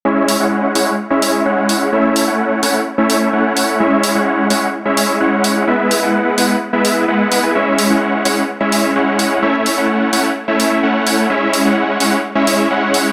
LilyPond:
<<
  \new Staff \with { instrumentName = "Supersaw synth" } { \time 4/4 \key cis \minor \tempo 4 = 128 <gis cis' e' cis'' e''>8. <gis cis' e' cis'' fis''>8. <gis cis' e' cis'' fis''>16 r8 <gis cis' e' cis'' e''>8. <gis cis' e' cis'' fis''>4 | <a cis' e' cis'' e''>8. <a cis' e' cis'' fis''>8. <a cis' e' cis'' fis''>16 r8 <a cis' e' cis'' e''>8. <a cis' e' cis'' fis''>4 | <gis cis' e' cis'' e''>8. <gis cis' e' cis'' fis''>8. <gis cis' e' cis'' fis''>16 r8 <gis cis' e' cis'' e''>8. <gis cis' e' cis'' fis''>4 | <gis b e' b' e''>8. <gis b e' b' fis''>8. <gis b e' b' fis''>16 r8 <gis b e' b' e''>8. <gis b e' b' fis''>8 <gis b e' b' fis''>16 <gis b e' b' gis''>16 |
<gis cis' e' cis'' e''>8. <gis cis' e' cis'' fis''>8. <gis cis' e' cis'' fis''>16 r8 <gis cis' e' cis'' e''>8. <gis cis' e' cis'' fis''>4 | <a cis' e' cis'' e''>8. <a cis' e' cis'' fis''>8. <a cis' e' cis'' fis''>16 r8 <a cis' e' cis'' e''>8. <a cis' e' cis'' fis''>4 | <gis cis' e' cis'' e''>8. <gis cis' e' cis'' fis''>8. <gis cis' e' cis'' fis''>16 r8 <gis cis' e' cis'' e''>8. <gis cis' e' cis'' fis''>4 | }
  \new DrumStaff \with { instrumentName = "Drums" } \drummode { \time 4/4 r8 hho8 r8 hho8 r8 hho8 r8 hho8 | r8 hho8 r8 hho8 r8 hho8 r8 hho8 | r8 hho8 r8 hho8 r8 hho8 r8 hho8 | r8 hho8 r8 hho8 r8 hho8 r8 hho8 |
r8 hho8 r8 hho8 r8 hho8 r8 hho8 | r8 hho8 r8 hho8 r8 hho8 r8 hho8 | r8 hho8 r8 hho8 r8 hho8 r8 hho8 | }
>>